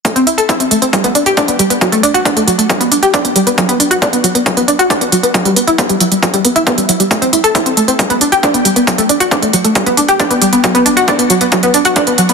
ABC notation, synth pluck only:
X:1
M:4/4
L:1/16
Q:1/4=136
K:Ador
V:1 name="Synth pluck"
A, C E A E C A, C G, B, D G D B, G, B, | F, A, D F D A, F, A, G, B, D G D B, G, B, | F, B, D F D B, F, B, F, B, D F D B, F, B, | F, G, B, E B, G, F, G, F, G, B, E B, G, F, G, |
A, C E A E C A, C G, B, D G D B, G, B, | F, A, D F D A, F, A, G, B, D G D B, G, B, | F, B, D F D B, F, B, F, B, D F D B, F, B, |]